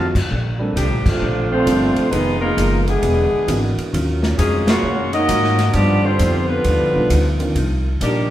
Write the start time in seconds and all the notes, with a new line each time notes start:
Already playing: F2 A2 C3 F3 F#3 A3 C4 D#4 F4 F#4 C5
0.15 kick, crash
0.30 A#1 A#2 A3 D4 G4, kick
0.59 G3 A#3 C4 D4 A4
0.75 C2 A2 A#2 D3 F3 G3 A3 C4 D4 G4, kick, hi-hat pedal, ride
0.91 A#1
1.05 A1 A2 D3 F3 A3 C4 D4 F4, kick, crash
1.20 A#1 A#2 A3 D4 G4
1.50 F3 A3 C4 D4 F4 C5
1.65 G1 A#2 G3 A3 A#3 C4 D4 G4 A4, kick, hi-hat pedal, ride
1.96 muted upright bass stroke, ride
2.10 F1 D#3 F3 G#3 B3 D#4 F4 G#4 B4, kick, ride
2.40 B2 D#3 G#3 A#3 D#4 F4 A#4
2.56 F#1 F3 G#3 B3 D#4 G#4, kick, hi-hat pedal, ride
2.85 B2 D3 E3 G#3 B3 D4 G#4, ride
3.02 E1 E3 A#3 D4 G#4, kick, ride
3.31 muted upright bass stroke
3.47 G#1 E3 A#3 B3 D4 F#4 G#4, kick, hi-hat pedal, ride
3.77 muted upright bass stroke, ride
3.92 D#2 D#3 F#3 A#3 C#4 F4, kick, ride
4.23 snare
4.38 F2 D#3 F3 F#3 G#3 A#3 C#4 F4 G#4, kick, hi-hat pedal, ride
4.67 A#2 C#3 F#3 A#3 F4 F#4, snare, ride
4.83 F#2 D#3 F#3 C#4 F4
5.13 F#3 A#3 C#4 D#4 F#4 A#4 D#5, ride
5.29 G#2 D#3 F#3 C#4 F4, kick, hi-hat pedal, ride
5.44 snare
5.59 snare, ride
5.73 G2 F3 B3 D4 D#4 F4 G4 D5, kick, ride
6.03 D3 F3 G3 C4 D4 F4 C5
6.19 F2 G2 F3 B3 D#4, kick, hi-hat pedal, ride
6.47 D3 F3 G3 B3 D4 F4 B4
6.64 D#2 G2 F3 B3 D#4, kick, ride
6.80 D2
6.94 B1 D#3 G3 B3 D4 F4
7.10 D2 G2 F3 B3 D#4, kick, hi-hat pedal, ride
7.39 D#3 A#3 C4 D4 F4, ride
7.55 C2 C3 F3 A#3 D#4, kick, ride
8.01 A#1 C3 F3 G3 A#3 D4 D#4 G4 D5, kick, hi-hat pedal, ride